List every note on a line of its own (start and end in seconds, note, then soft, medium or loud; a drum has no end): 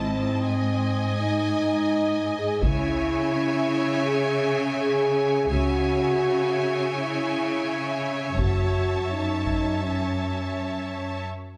0.00 0.21 G#1 medium
0.00 2.63 G#2 medium
0.00 1.19 C4 medium
0.00 0.45 E4 soft
0.00 2.59 D#5 soft
0.00 0.43 A5 soft
0.47 2.64 D#5 medium
0.47 2.62 G#5 medium
1.19 2.36 D#4 medium
2.39 2.62 G#4 medium
2.62 3.07 C#2 medium
2.62 5.48 C#3 medium
2.62 4.06 E4 medium
2.62 5.49 C#5 medium
2.62 5.49 E5 medium
2.62 5.46 G#5 medium
2.62 taiko medium
4.05 4.61 G#4 medium
4.78 5.49 G#4 medium
5.50 5.95 C#2 medium
5.50 8.35 C#3 medium
5.50 6.93 F#4 medium
5.50 11.26 C#5 medium
5.50 11.26 E5 soft
5.50 8.35 G#5 medium
6.95 7.91 E4 medium
8.38 8.84 F#1 medium
8.38 11.30 F#2 soft
8.38 9.07 F#4 medium
8.38 11.26 A5 soft
8.38 taiko medium
9.10 9.83 D#4 medium
9.46 taiko soft
9.82 11.29 C#4 medium